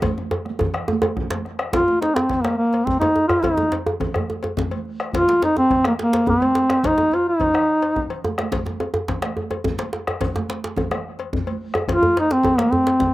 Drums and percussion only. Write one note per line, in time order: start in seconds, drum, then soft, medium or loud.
0.02 bombo low loud
0.02 cowbell medium
0.02 djembe slap soft
0.02 high conga medium
0.02 djembe tone loud
0.02 low conga medium
0.02 djembe bass medium
0.17 djembe slap medium
0.17 high conga soft
0.17 djembe tone medium
0.31 bombo rim soft
0.31 cowbell soft
0.31 djembe tone loud
0.45 bombo rim soft
0.45 high conga medium
0.59 bombo low medium
0.59 cowbell soft
0.59 djembe slap soft
0.59 djembe tone medium
0.59 djembe bass medium
0.59 low conga medium
0.74 bombo rim medium
0.74 cowbell medium
0.88 djembe tone loud
0.88 high conga medium
1.02 bombo rim soft
1.02 cowbell medium
1.02 djembe slap medium
1.02 djembe tone loud
1.17 bombo rim soft
1.17 bombo low loud
1.17 high conga soft
1.17 low conga medium
1.17 djembe bass soft
1.30 cowbell soft
1.30 djembe slap loud
1.30 high conga medium
1.30 djembe bass soft
1.45 bombo rim soft
1.45 djembe slap medium
1.59 bombo rim medium
1.59 cowbell soft
1.59 djembe slap medium
1.73 bombo low loud
1.73 cowbell medium
1.73 djembe slap medium
1.73 low conga medium
1.73 djembe bass medium
1.88 djembe slap medium
1.88 high conga soft
2.02 cowbell soft
2.02 djembe slap medium
2.02 djembe tone medium
2.16 djembe slap medium
2.29 bombo rim soft
2.29 bombo low medium
2.29 cowbell soft
2.29 low conga medium
2.29 djembe bass medium
2.44 bombo rim medium
2.44 cowbell soft
2.44 djembe slap medium
2.44 high conga medium
2.73 cowbell soft
2.73 djembe slap medium
2.73 high conga soft
2.87 bombo low loud
2.87 djembe tone medium
2.87 djembe bass medium
2.87 low conga medium
3.01 cowbell medium
3.01 high conga medium
3.01 djembe tone loud
3.16 djembe tone medium
3.29 bombo rim medium
3.29 cowbell soft
3.29 djembe bass medium
3.43 bombo low medium
3.43 cowbell medium
3.43 djembe tone medium
3.43 low conga medium
3.43 djembe bass medium
3.57 djembe slap medium
3.57 djembe tone medium
3.57 high conga medium
3.72 cowbell soft
3.72 djembe slap medium
3.72 djembe tone medium
3.86 djembe tone medium
4.00 bombo rim soft
4.00 bombo low medium
4.00 cowbell soft
4.00 djembe tone medium
4.00 djembe bass medium
4.00 low conga medium
4.14 bombo rim medium
4.14 cowbell medium
4.14 high conga medium
4.14 djembe bass medium
4.30 djembe tone medium
4.43 cowbell soft
4.43 djembe slap medium
4.43 high conga soft
4.43 djembe tone medium
4.57 bombo low medium
4.57 djembe slap medium
4.57 djembe tone medium
4.57 low conga medium
4.57 djembe bass medium
4.71 cowbell soft
4.71 high conga medium
4.85 djembe slap soft
5.00 bombo rim medium
5.00 cowbell soft
5.13 bombo low medium
5.13 cowbell medium
5.13 djembe slap medium
5.13 djembe bass medium
5.13 low conga medium
5.28 djembe slap medium
5.28 high conga medium
5.42 cowbell soft
5.42 djembe slap medium
5.42 djembe tone medium
5.56 djembe tone medium
5.70 bombo rim soft
5.70 bombo low medium
5.70 cowbell soft
5.70 djembe bass medium
5.70 low conga medium
5.84 bombo rim medium
5.84 cowbell medium
5.84 djembe slap medium
5.84 high conga soft
5.99 djembe slap medium
6.13 cowbell medium
6.13 djembe slap medium
6.13 high conga soft
6.26 bombo low medium
6.26 djembe tone medium
6.26 low conga medium
6.26 djembe bass medium
6.41 cowbell medium
6.41 high conga medium
6.55 djembe slap medium
6.55 djembe slap soft
6.70 bombo rim medium
6.70 cowbell soft
6.70 djembe slap medium
6.83 bombo low medium
6.83 cowbell medium
6.83 djembe slap soft
6.83 djembe slap medium
6.83 low conga medium
6.83 djembe bass medium
6.98 djembe slap medium
6.98 djembe tone medium
6.98 high conga medium
7.12 cowbell soft
7.12 djembe slap soft
7.12 djembe tone medium
7.26 djembe slap soft
7.40 bombo low medium
7.40 cowbell soft
7.40 djembe slap soft
7.40 djembe bass medium
7.40 low conga medium
7.54 bombo rim medium
7.54 cowbell medium
7.54 djembe slap soft
7.82 cowbell medium
7.82 djembe slap medium
7.96 bombo rim soft
7.96 bombo low medium
7.96 djembe tone medium
7.96 low conga soft
8.10 bombo rim soft
8.10 cowbell medium
8.10 low conga soft
8.24 high conga medium
8.24 djembe tone medium
8.38 bombo rim medium
8.38 cowbell soft
8.38 djembe slap medium
8.38 high conga medium
8.52 bombo low medium
8.52 cowbell medium
8.52 djembe slap medium
8.52 djembe bass medium
8.52 low conga medium
8.65 djembe slap medium
8.65 high conga medium
8.65 djembe tone medium
8.80 cowbell soft
8.80 djembe tone medium
8.94 djembe tone loud
9.08 bombo rim soft
9.08 bombo low medium
9.08 cowbell soft
9.08 djembe slap medium
9.08 low conga medium
9.08 djembe bass medium
9.22 bombo rim medium
9.22 cowbell soft
9.22 djembe slap medium
9.22 high conga medium
9.37 djembe tone medium
9.50 cowbell medium
9.50 djembe slap medium
9.50 djembe tone medium
9.50 high conga soft
9.64 bombo low medium
9.64 djembe tone medium
9.64 djembe bass medium
9.64 low conga medium
9.78 cowbell medium
9.78 djembe slap medium
9.78 high conga medium
9.93 djembe slap medium
9.93 djembe slap soft
10.07 bombo rim medium
10.07 cowbell soft
10.07 djembe tone medium
10.21 bombo low medium
10.21 cowbell medium
10.21 djembe tone medium
10.21 low conga medium
10.21 djembe bass medium
10.35 djembe slap medium
10.35 high conga medium
10.35 djembe tone loud
10.49 cowbell soft
10.49 djembe slap medium
10.49 djembe tone medium
10.64 djembe slap medium
10.77 bombo rim soft
10.77 bombo low medium
10.77 cowbell soft
10.77 djembe tone medium
10.77 low conga medium
10.77 djembe bass medium
10.91 bombo rim medium
10.91 cowbell medium
10.91 djembe tone medium
10.91 high conga medium
11.19 cowbell medium
11.19 djembe slap medium
11.19 high conga soft
11.33 bombo low medium
11.33 djembe tone medium
11.33 low conga medium
11.33 djembe bass medium
11.47 cowbell soft
11.47 high conga medium
11.61 djembe slap soft
11.74 bombo rim medium
11.74 cowbell soft
11.74 djembe tone medium
11.88 bombo low medium
11.88 cowbell medium
11.88 djembe slap medium
11.88 djembe bass medium
11.88 low conga medium
12.03 djembe slap medium
12.03 high conga soft
12.03 djembe bass medium
12.17 cowbell medium
12.17 djembe slap medium
12.31 djembe slap medium
12.43 bombo rim soft
12.43 bombo low medium
12.43 cowbell soft
12.43 djembe tone medium
12.43 low conga medium
12.43 djembe bass medium
12.58 bombo rim medium
12.58 cowbell soft
12.58 djembe slap medium
12.58 high conga medium
12.72 djembe bass medium
12.86 cowbell soft
12.86 djembe slap medium
12.86 high conga soft
13.00 bombo low medium
13.00 djembe slap medium
13.00 djembe tone medium
13.00 djembe bass medium
13.00 low conga medium